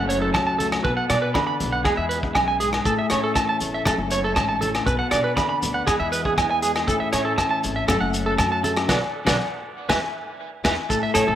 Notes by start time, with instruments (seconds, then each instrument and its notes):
Already playing: upright bass F#1, clean electric guitar F#2 A3
0.09 clean electric guitar C#4 C#5, closed hi-hat
0.22 clean electric guitar A4
0.34 upright bass C#2, clean electric guitar F#3 A5, kick, cross-stick, high conga, low agogo
0.47 clean electric guitar A5
0.58 clean electric guitar A3 A4, closed hi-hat, muted conga, high conga
0.72 cross-stick, low agogo
0.84 upright bass B1, clean electric guitar B2 B3 B4, kick, muted conga
0.97 clean electric guitar F#5
1.10 upright bass B2, clean electric guitar D5, muted clean electric guitar stroke, cross-stick, closed hi-hat, low conga, low agogo
1.22 clean electric guitar B4
1.34 clean electric guitar D3 B5, kick, cross-stick, high conga, low agogo
1.47 clean electric guitar B5
1.60 upright bass B1, clean electric guitar B3, closed hi-hat, high conga, low conga
1.73 clean electric guitar F#5
1.84 upright bass E2, clean electric guitar E2 G#3 G#4, kick, cross-stick, muted conga, low agogo
1.97 upright bass E2, clean electric guitar E5
2.09 clean electric guitar B3 B4, closed hi-hat
2.23 kick
2.35 upright bass B1, clean electric guitar F#2 G#5, kick, cross-stick, high conga, low agogo
2.48 clean electric guitar G#5
2.60 clean electric guitar G#2 G#4, closed hi-hat, muted conga
2.73 cross-stick, low agogo
2.85 upright bass A1, clean electric guitar A2 A3 A4, kick, muted conga, shekere
2.99 clean electric guitar E5
3.10 upright bass A2, clean electric guitar C#4 C#5, cross-stick, closed hi-hat, muted conga, low agogo, shekere
3.24 clean electric guitar A4
3.35 clean electric guitar E3 A5, kick, cross-stick, low agogo, shekere
3.49 clean electric guitar A5
3.60 upright bass G1, clean electric guitar A3, closed hi-hat, shekere
3.74 clean electric guitar E5
3.85 upright bass F#1, clean electric guitar F#2 A3 A4, kick, cross-stick, muted conga, high conga, low agogo, shekere
3.98 upright bass F#1
4.11 clean electric guitar B3 C#5, closed hi-hat, shekere
4.24 clean electric guitar C#4 A4
4.36 upright bass A1, clean electric guitar G#2 A5, kick, cross-stick, high conga, low agogo, shekere
4.49 clean electric guitar A5
4.61 clean electric guitar A2 A4, closed hi-hat, muted conga, high conga, shekere
4.75 cross-stick, low agogo
4.86 upright bass B1, clean electric guitar B2 B3 B4, kick, shekere
4.99 clean electric guitar F#5
5.11 upright bass B2, clean electric guitar D4 D5, cross-stick, closed hi-hat, muted conga, low conga, low agogo, shekere
5.24 clean electric guitar B4
5.37 clean electric guitar D3 B5, kick, cross-stick, high conga, low agogo, shekere
5.49 clean electric guitar B5
5.62 upright bass D2, clean electric guitar B3, closed hi-hat, high conga, low conga, shekere
5.74 clean electric guitar F#5
5.87 upright bass E2, clean electric guitar E2 G#3 G#4, kick, cross-stick, low agogo, shekere
6.00 upright bass E2, clean electric guitar E5
6.12 clean electric guitar B3 B4, closed hi-hat, shekere
6.25 clean electric guitar G#4, kick
6.38 upright bass E2, clean electric guitar E3 G#5, kick, cross-stick, high conga, low agogo, shekere
6.51 clean electric guitar G#5
6.62 clean electric guitar G#3 G#4, closed hi-hat, muted conga, shekere
6.76 cross-stick, low agogo
6.87 upright bass A1, clean electric guitar A2 E3 A3 C#4 E4 A4, kick, muted conga, shekere
7.00 clean electric guitar E5
7.12 upright bass A2, clean electric guitar C#4 C#5, cross-stick, closed hi-hat, muted conga, low agogo, shekere
7.25 clean electric guitar A4
7.38 clean electric guitar E3 A5, kick, cross-stick, low agogo, shekere
7.51 clean electric guitar A5
7.64 upright bass G#1, clean electric guitar A3, closed hi-hat, shekere
7.76 clean electric guitar E5
7.88 upright bass F#1, clean electric guitar F#2 A3 A4, kick, cross-stick, muted conga, high conga, low agogo, shekere
8.01 upright bass F#1, clean electric guitar F#5
8.14 clean electric guitar C#4, closed hi-hat, shekere
8.26 clean electric guitar A4
8.38 upright bass F#2, clean electric guitar F#3 A5, kick, cross-stick, high conga, low agogo, shekere
8.52 clean electric guitar A5
8.64 clean electric guitar A3 A4, closed hi-hat, muted conga, high conga, shekere
8.77 cross-stick, low agogo
8.87 upright bass B1, clean electric guitar D3 F#3 B3 B4 D5 F#5, kick, snare, high conga, low agogo, shekere
9.25 upright bass B1, clean electric guitar D3 F#3 B3 B4 D5 F#5, kick, snare, high conga, low agogo, shekere
9.89 upright bass E2, clean electric guitar E3 G#3 B3 B4 E5 G#5, kick, snare, high conga, low agogo, shekere
10.64 upright bass E2, clean electric guitar E3 G#3 B3 B4 E5 G#5, kick, snare, high conga, low agogo, shekere
10.89 upright bass A1, clean electric guitar A2 A4, kick, muted conga, shekere
11.03 clean electric guitar E5
11.14 upright bass A1, clean electric guitar A3 A4 C#5, cross-stick, closed hi-hat, low agogo, shekere
11.28 upright bass A1, clean electric guitar A4